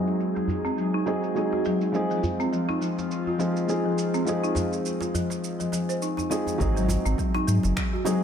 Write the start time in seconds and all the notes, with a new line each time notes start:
Already playing: F#3 G#3 C4 D#4 G#4
0.07 shaker
0.20 shaker
0.35 F#3, djembe slap, shaker
0.48 djembe bass, shaker
0.65 C4, djembe slap, shaker
0.78 F#3, shaker
0.94 D#4
1.06 F#3 G#3 C4 D#4 G#4, djembe slap, shaker
1.23 shaker
1.35 F#3 G#3 C4 D#4 G#4, shaker
1.52 F#4, djembe slap
1.65 F#3, djembe tone, shaker
1.81 shaker
1.92 F3 G#3 C4 D#4 F4 G#4, shaker
2.11 F3, shaker
2.23 djembe tone, djembe bass, shaker
2.40 C4, shaker
2.53 F3, shaker
2.69 D#4, djembe slap
2.81 F3, shaker
2.99 djembe slap, shaker
3.11 shaker
3.27 F4, djembe tone
3.38 F3 G#3 C4 D#4 G#4, djembe slap, shaker
3.57 shaker
3.67 F3 G#3 C4 D#4 G#4, shaker
3.85 F3
3.98 shaker
4.14 C4, shaker
4.25 F3 G#3 C4 D#4, shaker
4.29 G#4
4.44 D#4, shaker
4.55 F3, djembe slap, djembe tone, djembe bass, shaker
4.73 shaker
4.86 shaker
5.01 F4, djembe slap, shaker
5.14 F3, djembe bass, shaker
5.30 djembe slap, shaker
5.44 shaker
5.60 F3, djembe tone, shaker
5.72 F3, djembe slap, shaker
5.89 C5, shaker
6.02 D#4, shaker
6.17 D#4, djembe slap, djembe tone, shaker
6.30 F3 G#3 C4 D#4 G#4, djembe tone, shaker
6.46 djembe tone, shaker
6.58 G#1 F#3 G#3 C4 D#4 G#4, kick, shaker
6.77 F#3, shaker
6.88 djembe slap, djembe tone, djembe bass, shaker
7.05 G#1 C4, shaker
7.18 F#3, kick, shaker
7.34 D#4, djembe slap
7.47 G#2 F#3, shaker
7.63 F#1, djembe slap, shaker
7.76 finger snap, kick, shaker
7.93 F#4, djembe tone
8.04 F#3 G#3 C4 D#4 G#4, djembe slap, shaker